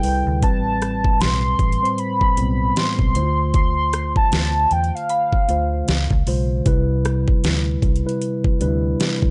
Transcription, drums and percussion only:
0.03 open hi-hat
0.42 kick, closed hi-hat
0.82 cross-stick, closed hi-hat
1.04 kick
1.21 snare, closed hi-hat
1.59 kick, closed hi-hat
1.72 closed hi-hat
1.85 closed hi-hat
1.98 closed hi-hat
2.21 kick
2.37 closed hi-hat
2.76 snare, closed hi-hat
2.99 kick
3.15 closed hi-hat
3.54 kick, closed hi-hat
3.93 cross-stick, closed hi-hat
4.16 kick
4.32 snare, closed hi-hat
4.71 closed hi-hat
4.84 closed hi-hat
4.97 closed hi-hat
5.09 closed hi-hat
5.33 kick
5.49 closed hi-hat
5.88 snare, closed hi-hat
6.11 kick
6.27 open hi-hat
6.66 kick, closed hi-hat
7.05 cross-stick, closed hi-hat
7.28 kick
7.44 snare, closed hi-hat
7.82 kick, closed hi-hat
7.96 closed hi-hat
8.09 closed hi-hat
8.22 closed hi-hat
8.44 kick
8.61 closed hi-hat
9.00 snare, closed hi-hat
9.22 kick

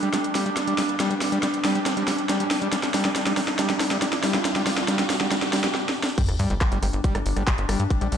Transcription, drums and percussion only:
0.03 closed hi-hat
0.14 snare, closed hi-hat
0.24 closed hi-hat
0.35 snare, open hi-hat
0.46 closed hi-hat
0.57 snare, closed hi-hat
0.67 closed hi-hat
0.78 snare, open hi-hat
0.89 closed hi-hat
1.00 snare, closed hi-hat
1.11 closed hi-hat
1.21 snare, open hi-hat
1.32 closed hi-hat
1.43 snare, closed hi-hat
1.54 closed hi-hat
1.65 snare, open hi-hat
1.75 closed hi-hat
1.86 snare, closed hi-hat
1.97 closed hi-hat
2.08 snare, open hi-hat
2.19 closed hi-hat
2.29 snare, closed hi-hat
2.40 closed hi-hat
2.51 snare, open hi-hat
2.62 closed hi-hat
2.73 snare, closed hi-hat
2.83 snare, closed hi-hat
2.94 snare, open hi-hat
3.05 snare, closed hi-hat
3.16 snare, closed hi-hat
3.26 snare, closed hi-hat
3.37 snare, open hi-hat
3.48 snare, closed hi-hat
3.59 snare, closed hi-hat
3.70 snare, closed hi-hat
3.80 snare, open hi-hat
3.91 snare, closed hi-hat
4.02 snare, closed hi-hat
4.13 snare, closed hi-hat
4.24 snare, open hi-hat
4.34 snare, closed hi-hat
4.45 snare, closed hi-hat
4.56 snare, closed hi-hat
4.67 snare, open hi-hat
4.78 snare, closed hi-hat
4.88 snare, closed hi-hat
4.99 snare, closed hi-hat
5.10 snare, open hi-hat
5.21 snare, closed hi-hat
5.32 snare, closed hi-hat
5.42 snare, closed hi-hat
5.53 snare, open hi-hat
5.64 snare, closed hi-hat
5.75 snare
5.89 snare
6.03 snare
6.18 kick, closed hi-hat, crash
6.29 cross-stick, closed hi-hat
6.39 open hi-hat
6.50 closed hi-hat
6.61 kick, cross-stick, clap, closed hi-hat
6.72 closed hi-hat
6.83 cross-stick, open hi-hat
6.93 closed hi-hat
7.04 kick, closed hi-hat
7.15 cross-stick, closed hi-hat
7.26 open hi-hat
7.37 cross-stick, closed hi-hat
7.47 kick, clap, closed hi-hat
7.58 closed hi-hat
7.69 cross-stick, open hi-hat
7.80 closed hi-hat
7.90 kick, cross-stick, closed hi-hat
8.01 closed hi-hat
8.12 open hi-hat

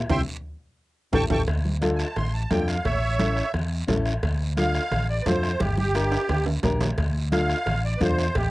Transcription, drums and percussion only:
0.10 bombo low, low conga, high timbale, long guiro
1.13 bombo low, low conga, high timbale, long guiro
1.30 bombo low, low conga, high timbale, long guiro
1.47 bombo low, bombo rim, cowbell, long guiro
1.65 high conga
1.82 bombo rim, cowbell, high conga, short guiro
1.99 bombo rim, short guiro
2.16 bombo rim, cowbell, low conga, long guiro
2.51 bombo low, bombo rim, cowbell, high conga, low timbale, short guiro
2.68 bombo rim, short guiro
2.85 bombo low, bombo rim, cowbell, low conga, long guiro
3.19 bombo rim, cowbell, high conga, short guiro
3.37 bombo rim, short guiro
3.54 bombo rim, cowbell, low conga, long guiro
3.88 bombo low, bombo rim, cowbell, high conga, low conga, low timbale, short guiro
4.06 bombo rim, short guiro
4.23 bombo low, bombo rim, cowbell, long guiro
4.57 bombo rim, cowbell, high conga, short guiro
4.75 bombo rim, short guiro
4.92 bombo rim, cowbell, low conga, long guiro
5.26 bombo low, bombo rim, cowbell, high conga, low timbale, short guiro
5.43 bombo rim, short guiro
5.60 bombo low, bombo rim, cowbell, high conga, long guiro
5.78 high conga
5.95 bombo rim, cowbell, short guiro
6.12 bombo rim, high timbale, short guiro
6.29 bombo rim, cowbell, low conga, high timbale, long guiro
6.46 low conga, high timbale
6.63 bombo low, bombo rim, cowbell, low conga, low timbale, short guiro
6.81 bombo rim, low conga, low timbale, short guiro
6.98 bombo low, bombo rim, cowbell, long guiro
7.32 bombo rim, cowbell, high conga, short guiro
7.50 bombo rim, short guiro
7.66 bombo rim, cowbell, low conga, long guiro
8.01 bombo low, bombo rim, cowbell, high conga, short guiro
8.18 bombo rim, short guiro
8.35 bombo low, bombo rim, cowbell, long guiro

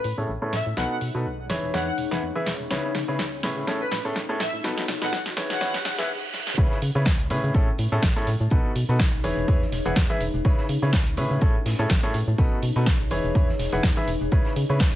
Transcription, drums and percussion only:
0.04 open hi-hat
0.53 snare, open hi-hat
0.77 snare
1.01 open hi-hat
1.50 snare, open hi-hat
1.74 snare
1.98 open hi-hat
2.11 snare
2.46 snare, open hi-hat
2.70 snare
2.95 snare, open hi-hat
3.19 snare
3.43 snare, open hi-hat
3.67 snare
3.92 snare, open hi-hat
4.16 snare
4.40 snare, open hi-hat
4.64 snare
4.78 snare
4.88 snare, open hi-hat
5.02 snare
5.13 snare
5.26 snare
5.37 snare, open hi-hat
5.50 snare
5.61 snare
5.74 snare
5.85 snare, open hi-hat
5.98 snare
6.34 snare
6.47 snare
6.58 kick, tambourine, shaker
6.71 snare
6.82 open hi-hat, tambourine, shaker
6.95 shaker
7.05 kick, snare, open hi-hat, shaker
7.20 closed hi-hat
7.30 open hi-hat, tambourine, shaker
7.44 shaker
7.54 kick, tambourine, shaker
7.78 open hi-hat, tambourine, shaker
7.92 shaker
8.02 kick, snare, tambourine, shaker
8.17 snare
8.27 open hi-hat, tambourine, shaker
8.41 shaker
8.50 kick, tambourine, shaker
8.76 open hi-hat, tambourine, shaker
8.89 shaker
8.99 kick, snare, tambourine, shaker
9.24 open hi-hat, tambourine, shaker
9.37 shaker
9.48 kick, tambourine, shaker
9.62 snare
9.72 snare, open hi-hat, tambourine, shaker
9.85 closed hi-hat, shaker
9.96 kick, snare, tambourine, shaker
10.09 snare
10.21 open hi-hat, tambourine, shaker
10.34 shaker
10.45 kick, tambourine, shaker
10.58 snare
10.69 open hi-hat, tambourine, shaker
10.83 shaker
10.93 kick, snare, open hi-hat, shaker
11.06 closed hi-hat
11.17 open hi-hat, tambourine, shaker
11.31 shaker
11.41 kick, tambourine, shaker
11.66 snare, open hi-hat, shaker
11.79 closed hi-hat, shaker
11.90 kick, snare, tambourine, shaker
12.04 snare
12.14 open hi-hat, tambourine, shaker
12.28 shaker
12.38 kick, tambourine, shaker
12.62 open hi-hat, tambourine, shaker
12.76 open hi-hat, shaker
12.86 kick, snare, tambourine, shaker
13.10 open hi-hat, tambourine, shaker
13.24 shaker
13.35 kick, tambourine, shaker
13.49 snare
13.59 snare, open hi-hat, tambourine, shaker
13.72 closed hi-hat, shaker
13.83 kick, snare, tambourine, shaker
13.97 snare
14.08 open hi-hat, tambourine, shaker
14.21 shaker
14.32 kick, tambourine, shaker
14.45 snare
14.56 open hi-hat, tambourine, shaker
14.70 shaker
14.79 kick, snare, open hi-hat, shaker

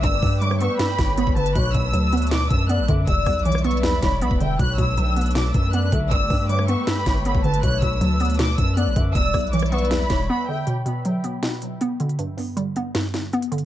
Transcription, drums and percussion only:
0.04 kick, closed hi-hat
0.23 kick, open hi-hat
0.42 closed hi-hat
0.51 cross-stick
0.61 closed hi-hat
0.79 snare, closed hi-hat
0.99 kick, snare, closed hi-hat
1.18 closed hi-hat
1.27 kick
1.37 closed hi-hat
1.46 closed hi-hat
1.55 kick, closed hi-hat
1.74 kick, closed hi-hat
1.93 closed hi-hat
2.12 closed hi-hat
2.17 closed hi-hat
2.22 closed hi-hat
2.27 closed hi-hat
2.31 snare, closed hi-hat
2.50 kick, closed hi-hat
2.69 closed hi-hat
2.88 kick, closed hi-hat
3.07 kick, closed hi-hat
3.26 kick, cross-stick, closed hi-hat, open hi-hat
3.33 closed hi-hat
3.39 closed hi-hat
3.45 closed hi-hat
3.52 cross-stick, closed hi-hat
3.58 closed hi-hat
3.64 closed hi-hat
3.71 closed hi-hat
3.77 closed hi-hat
3.83 snare, closed hi-hat
4.03 kick, snare, closed hi-hat
4.21 closed hi-hat
4.31 kick
4.40 closed hi-hat
4.59 kick, closed hi-hat
4.78 kick, closed hi-hat
4.97 closed hi-hat
5.16 closed hi-hat
5.21 closed hi-hat
5.26 closed hi-hat
5.31 closed hi-hat
5.35 snare, closed hi-hat
5.54 kick, closed hi-hat
5.73 closed hi-hat
5.92 kick, closed hi-hat
6.11 kick, closed hi-hat
6.30 kick, open hi-hat
6.49 closed hi-hat
6.59 cross-stick
6.68 closed hi-hat
6.87 snare, closed hi-hat
7.06 kick, snare, closed hi-hat
7.25 closed hi-hat
7.35 kick
7.44 closed hi-hat
7.54 closed hi-hat
7.63 kick, closed hi-hat
7.82 kick, closed hi-hat
8.01 closed hi-hat
8.20 closed hi-hat
8.25 closed hi-hat
8.30 closed hi-hat
8.34 closed hi-hat
8.39 snare, closed hi-hat
8.58 kick, closed hi-hat
8.77 closed hi-hat
8.96 kick, closed hi-hat
9.15 kick, closed hi-hat
9.34 kick, cross-stick, closed hi-hat, open hi-hat
9.40 closed hi-hat
9.47 closed hi-hat
9.53 closed hi-hat
9.59 cross-stick, closed hi-hat
9.66 closed hi-hat
9.72 closed hi-hat
9.78 closed hi-hat
9.85 closed hi-hat
9.91 snare, closed hi-hat
10.10 kick, snare, closed hi-hat
10.67 closed hi-hat
10.86 closed hi-hat
11.05 closed hi-hat
11.24 closed hi-hat
11.43 snare, closed hi-hat
11.62 closed hi-hat
11.81 closed hi-hat
12.00 closed hi-hat
12.09 closed hi-hat
12.19 closed hi-hat
12.38 open hi-hat
12.57 closed hi-hat
12.76 closed hi-hat
12.95 snare, closed hi-hat
13.14 snare, closed hi-hat
13.33 closed hi-hat
13.42 closed hi-hat
13.52 closed hi-hat
13.58 closed hi-hat

